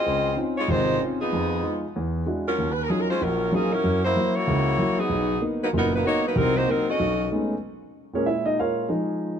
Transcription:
Already playing: saxophone section C4 F4 G#4 D#5
0.06 grand piano C#2
0.36 grand piano C4 C#4 D#4 F4
0.58 saxophone section G#3 D#4 F4 C#5
0.68 grand piano G#1 C3, saxophone section G#3 D#4 F4 C5
1.00 grand piano C4 C#4 D#4 F4
1.21 saxophone section F3 B3 D#4 G#4
1.33 grand piano F2
1.63 grand piano G#3 D#4 F4
1.96 grand piano E2
2.26 grand piano G#3 D4 E4 F#4
2.47 saxophone section F#3 C#4 F4 A#4
2.58 grand piano D#2
2.72 saxophone section B4
2.82 saxophone section A#4
2.89 grand piano F#3 C#4 D#4 F4, saxophone section G#4
3.00 saxophone section A#4
3.10 saxophone section G#3 C#4 F4 C5
3.21 grand piano A#1, saxophone section F#3 C#4 F4 A#4
3.52 saxophone section F3 A#3 C#4 G#4, grand piano F#3 C#4 D#4 F4
3.73 saxophone section F#3 C#4 E4 A#4
3.84 grand piano F#2
4.04 saxophone section A#3 E4 F#4 C5
4.16 grand piano F#3 A#3 E4
4.35 saxophone section A#3 E4 F#4 C#5
4.47 grand piano C#2 C#3
4.78 grand piano F#3 A#3 E4
4.99 saxophone section F#3 B3 D#4 G#4
5.09 grand piano B1
5.41 grand piano A#3 B3 D#4
5.63 saxophone section F#3 A#3 D#4 B4
5.73 grand piano F#1 A#2, saxophone section F#3 B3 D#4 A#4
5.95 saxophone section F#3 A#3 D#4 B4
6.04 grand piano A#3 B3 D#4, saxophone section A#3 D#4 F#4 C#5
6.25 saxophone section F#3 A#3 D#4 B4
6.36 grand piano C2 C3, saxophone section F#3 C4 D#4 A#4
6.56 saxophone section A#3 D#4 F#4 C5
6.68 saxophone section F#3 C4 D#4 A#4, grand piano A#3 C4 D#4
6.89 saxophone section C#4 F#4 A4 D#5
6.99 grand piano B1
7.32 grand piano G#3 A3 B3 C#4 D#4
8.14 grand piano A#2 G#3 C#4 G#4 A#4 C#5
8.26 grand piano E4 E5
8.46 grand piano D#4 D#5
8.60 grand piano F4 A#4 C#5 F5
8.89 grand piano F3 G#3 D#4

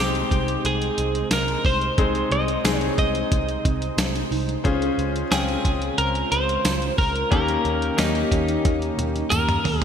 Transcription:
Already playing: picked electric bass C2, analog synth pad C3 G#3 D#4 C5, grand piano G#3 G#4
0.00 grand piano C4 D#4 C5, clean electric guitar G4
0.15 closed hi-hat
0.31 picked electric bass C2, kick, closed hi-hat
0.48 closed hi-hat
0.65 picked electric bass C2, clean electric guitar G#4, closed hi-hat
0.82 closed hi-hat
0.98 picked electric bass C2, closed hi-hat
1.15 closed hi-hat
1.31 picked electric bass C2, clean electric guitar A#4, snare, closed hi-hat, tambourine
1.48 closed hi-hat
1.64 picked electric bass C2, clean electric guitar C5, kick, open hi-hat
1.82 closed hi-hat
1.98 picked electric bass C2, grand piano G#3 C4 D#4 G#4, kick, closed hi-hat
2.15 closed hi-hat
2.31 picked electric bass C2, clean electric guitar D#5, closed hi-hat
2.48 closed hi-hat
2.64 picked electric bass C2, grand piano G#3 C4 D#4 G#4, snare, closed hi-hat, tambourine
2.79 clean electric guitar C#5, closed hi-hat
2.98 picked electric bass C2, clean electric guitar D#5, kick, closed hi-hat
3.15 closed hi-hat
3.32 picked electric bass C2, kick, closed hi-hat
3.49 closed hi-hat
3.65 picked electric bass C2, marimba C4, kick, closed hi-hat
3.82 closed hi-hat
3.97 picked electric bass C2, snare, closed hi-hat, tambourine
4.16 closed hi-hat
4.31 picked electric bass C2, marimba D#4, open hi-hat
4.49 closed hi-hat
4.64 picked electric bass C#2, analog synth pad C#3 G#3 F4, grand piano C#4 F4 G#4 C5, marimba C#4, kick, closed hi-hat
4.82 closed hi-hat
4.98 picked electric bass C#2, closed hi-hat
5.16 closed hi-hat
5.31 picked electric bass C#2, grand piano C4 C#4 F4 G5, clean electric guitar G#4, snare, closed hi-hat, tambourine
5.49 closed hi-hat
5.65 picked electric bass C#2, kick, closed hi-hat
5.82 closed hi-hat
5.98 picked electric bass C#2, clean electric guitar A#4, closed hi-hat
6.15 closed hi-hat
6.32 picked electric bass C#2, clean electric guitar C5, closed hi-hat
6.49 closed hi-hat
6.65 picked electric bass C#2, snare, closed hi-hat, tambourine
6.82 closed hi-hat
6.98 picked electric bass C#2, clean electric guitar A#4, kick, open hi-hat
7.16 closed hi-hat
7.31 picked electric bass D#2, analog synth pad D#3 A#3 C#4 G4, grand piano A#3 C#4 D#4 G4, clean electric guitar A#4, kick, closed hi-hat
7.48 closed hi-hat
7.65 picked electric bass D#2, closed hi-hat
7.82 closed hi-hat
7.97 picked electric bass D#2, grand piano A#3 C#4 D#4 G4, clean electric guitar D#4, snare, closed hi-hat, tambourine
8.15 closed hi-hat
8.31 picked electric bass D#2, kick, closed hi-hat
8.48 closed hi-hat
8.65 picked electric bass D#2, kick, closed hi-hat, high tom
8.82 closed hi-hat
8.98 picked electric bass D#2, closed hi-hat, mid tom
9.16 closed hi-hat
9.30 picked electric bass D#2, clean electric guitar A#4, closed hi-hat, mid tom, tambourine
9.49 closed hi-hat, mid tom
9.65 picked electric bass D#2, floor tom, open hi-hat
9.78 clean electric guitar G#4

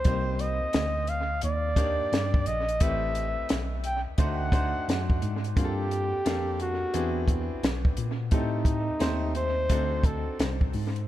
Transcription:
Already playing: flugelhorn C5
0.04 tine electric piano C2, upright piano A#3 C4 D#4 G4 C5, kick, closed hi-hat
0.39 flugelhorn D#5, closed hi-hat
0.62 tine electric piano D2
0.73 tine electric piano D2, snare, closed hi-hat
1.07 flugelhorn F5, closed hi-hat
1.41 tine electric piano D#2, flugelhorn D5, closed hi-hat
1.76 upright piano A#3 D4 D#4 G4 C#5, kick, closed hi-hat
1.85 upright piano D5
2.13 tine electric piano G2, snare, closed hi-hat
2.34 kick
2.46 tine electric piano A#1, flugelhorn D#5, closed hi-hat
2.69 closed hi-hat
2.80 tine electric piano A1, upright piano A3 C4 E4 G4 B4, flugelhorn E5, kick, closed hi-hat
3.15 closed hi-hat
3.49 tine electric piano B1, snare, closed hi-hat
3.84 flugelhorn G5, closed hi-hat
4.07 tine electric piano D2
4.18 tine electric piano D2, upright piano A3 D4 D#4 F#4 C5, flugelhorn F#5, kick, closed hi-hat
4.52 upright piano A3 D4 D#4 F#4 C5, kick, closed hi-hat
4.88 tine electric piano F#2, snare, closed hi-hat
5.10 kick
5.22 tine electric piano G#2, closed hi-hat
5.44 closed hi-hat
5.56 tine electric piano G2, upright piano A#3 C4 D4 F4 G#4, flugelhorn G4, kick, closed hi-hat
5.64 upright piano A4
5.91 closed hi-hat
6.13 tine electric piano F2
6.25 tine electric piano F2, upright piano A#3 C4 D4 A4 F5, snare, closed hi-hat
6.60 flugelhorn F#4, closed hi-hat
6.82 tine electric piano E2
6.94 tine electric piano E2, upright piano B3 C4 D4 E4 G#4, closed hi-hat
7.26 flugelhorn F#4, kick, closed hi-hat
7.31 flugelhorn E4
7.52 tine electric piano B1
7.63 tine electric piano B1, snare, closed hi-hat
7.85 kick
7.97 tine electric piano A#2, closed hi-hat
8.31 tine electric piano A2, upright piano A3 C4 D#4 G4 A4, flugelhorn D#4, kick, closed hi-hat
8.65 kick, closed hi-hat
8.89 tine electric piano D#2
8.99 tine electric piano D#2, upright piano A3 C4 D#4 G4 C5, snare, closed hi-hat
9.35 flugelhorn C5, closed hi-hat
9.69 tine electric piano D2, upright piano C4 D4 D#4 F#4 A4, kick, closed hi-hat
10.03 flugelhorn A4, kick, closed hi-hat
10.27 tine electric piano C2
10.39 tine electric piano C2, snare, closed hi-hat
10.61 kick
10.73 tine electric piano G#2, open hi-hat
10.96 closed hi-hat

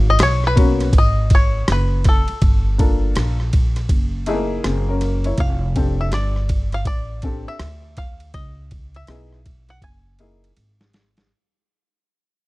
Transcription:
Already playing: upright bass G#1
0.10 five-string banjo D#5
0.19 upright bass B1, five-string banjo C#5, cross-stick, hi-hat pedal, ride
0.44 five-string banjo B4, cross-stick
0.56 upright piano A#3 B3 C#4 F#4, kick, ride
0.80 cross-stick, ride
0.93 upright bass G#1, kick, ride
0.98 five-string banjo D#5
1.30 kick, ride
1.35 five-string banjo C#5
1.68 upright bass F#1, cross-stick, hi-hat pedal, ride
1.72 five-string banjo B4
2.04 kick, cross-stick, ride
2.09 five-string banjo A4
2.28 muted upright bass stroke, ride
2.42 upright bass G1, kick, ride
2.78 upright piano A#3 D4 F4 A4, kick, ride
3.16 upright bass A#1, cross-stick, hi-hat pedal, ride
3.40 cross-stick
3.53 kick, ride
3.76 cross-stick, ride
3.89 upright bass F#1, kick, ride
4.26 upright piano A3 D#4 E4 G#4, ride
4.33 upright piano A#3
4.64 upright bass F#1, upright piano C4 G#4, cross-stick, hi-hat pedal, ride
4.89 upright piano C#4 A#4
5.01 cross-stick, ride
5.24 upright piano E4 C#5, ride
5.38 upright bass F1, five-string banjo F5, kick, ride
5.76 upright piano C4 D4 G4 A4, kick, ride
6.01 five-string banjo E5
6.12 upright bass G1, five-string banjo D5, cross-stick, hi-hat pedal, ride
6.36 cross-stick
6.49 kick, ride
6.72 five-string banjo F5, cross-stick, ride
6.85 upright bass A1, five-string banjo D5, kick, ride
7.22 upright piano C4 D4 G4 A4, kick, ride
7.47 five-string banjo E5, muted upright bass stroke
7.59 upright bass D2, cross-stick, hi-hat pedal, ride
7.97 five-string banjo F5, kick, cross-stick, ride
8.20 ride
8.34 upright bass C#2, five-string banjo D#5, kick, ride
8.71 kick, ride
8.95 five-string banjo E5, ride
9.07 upright bass B1, upright piano B3 D#4 E4 G#4, cross-stick, hi-hat pedal, ride
9.33 cross-stick
9.46 kick, ride
9.69 five-string banjo F#5, cross-stick, ride
9.82 upright bass F#1, five-string banjo G#5, kick, ride
10.19 upright piano A#3 D#4 E4 G#4, ride
10.44 ride
10.57 upright bass G#1, hi-hat pedal, ride
10.81 snare
10.93 snare, ride
11.17 snare, ride

